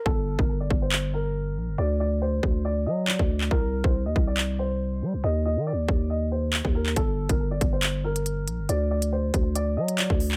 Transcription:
<<
  \new Staff \with { instrumentName = "Grand piano" } { \time 4/4 \key g \minor \tempo 4 = 139 a'8. bes'8 d''8 c''8. bes'4. | d''8 d''8 c''4 d''8 ees''8 d''4 | bes'8. c''8 ees''8 d''8. c''4. | ees''8 ees''8 d''4 ees''8 c''4 bes'8 |
a'8. bes'8 d''8 c''8. bes'4. | d''8 d''8 c''4 d''8 ees''8 d''4 | }
  \new Staff \with { instrumentName = "808-style bass" } { \clef bass \time 4/4 \key g \minor g,,8. g,,8. g,,2 bes,,16 g,,16 | d,4. d,4 fis8. d,8. | c,8. c,8 ees,16 c,2 g16 c,16 | ees,8. ees16. ees,16. ees,4.~ ees,16 ees,8. |
g,,8. g,,8. g,,2 bes,,16 g,,16 | d,4. d,4 fis8. d,8. | }
  \new DrumStaff \with { instrumentName = "Drums" } \drummode { \time 4/4 bd8. bd16 r8 bd8 hc4 r4 | r4 r8 bd8 r4 hc16 bd8 hc16 | bd8. bd16 r8 bd8 hc4 r4 | r4 r8 bd8 r4 hc16 bd8 hc16 |
<hh bd>8. <hh bd>16 r8 <hh bd>8 <hc hh>8. hh16 hh8 hh8 | hh8. hh16 r8 <hh bd>8 hh8. hh16 <hc hh>16 bd16 hho16 hc16 | }
>>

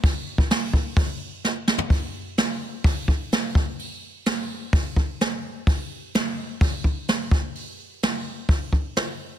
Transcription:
\new DrumStaff \with { instrumentName = "Drums" } \drummode { \time 4/4 \tempo 4 = 128 <hho bd>8. bd16 <hho sn>8 bd8 <hho bd>4 sn8 sn16 tomfh16 | <hho bd>4 <hho sn>4 <hho bd>8 bd8 <hho sn>8 bd8 | hho4 <hho sn>4 <hho bd>8 bd8 <hho sn>4 | <hho bd>4 <hho sn>4 <hho bd>8 bd8 <hho sn>8 bd8 |
hho4 <hho sn>4 <hho bd>8 bd8 <hho sn>4 | }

